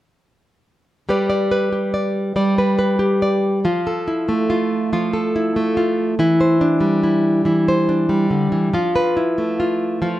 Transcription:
1.09 2.35 G3 medium
1.09 1.71 G4 soft
1.09 1.50 B4 soft
1.09 1.28 D5 soft
1.30 1.93 D5 soft
1.51 2.57 B4 soft
1.72 2.98 G4 soft
1.94 2.35 D5 soft
2.36 3.64 G3 medium
2.36 2.57 D5 soft
2.58 2.77 B4 soft
2.79 3.59 B4 soft
2.99 3.58 G4 soft
3.22 3.59 D5 soft
3.65 4.92 F3 medium
3.65 4.49 F4 soft
3.87 5.12 A4 soft
4.08 5.35 E4 soft
4.29 5.55 A3 soft
4.50 4.92 F4 soft
4.93 6.14 F3 medium
4.93 5.76 F4 soft
5.13 6.19 A4 soft
5.36 6.20 E4 soft
5.56 6.14 A3 soft
5.77 6.14 F4 soft
6.19 7.45 E3 medium
6.19 7.03 E4 medium
6.41 7.67 C5 soft
6.61 7.88 D4 soft
6.81 8.08 G3 soft
7.03 7.46 E4 soft
7.45 8.30 E3 medium
7.45 8.73 E4 soft
7.68 8.69 C5 soft
7.89 9.16 D4 soft
8.09 8.73 G3 soft
8.30 8.52 D3 soft
8.52 8.73 E3 soft
8.73 10.01 F3 medium
8.73 9.59 F4 soft
8.96 10.20 B4 soft
9.17 10.20 E4 soft
9.38 10.20 A3 soft
9.60 10.01 F4 soft
10.02 10.20 F3 soft
10.02 10.20 F4 soft

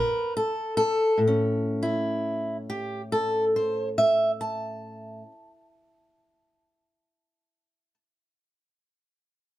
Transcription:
0.00 0.67 A#2 medium
0.00 0.33 A#4 loud
0.00 0.34 B4 medium
0.37 0.76 A4 medium
0.77 1.19 A4 loud
1.18 5.21 A2 medium
1.27 5.31 C#4 medium
1.83 2.56 E4 medium
2.70 3.01 G4 medium
3.12 3.44 A4 medium
3.56 3.88 C5 medium
3.98 4.30 E5 loud
4.41 7.94 A5 medium

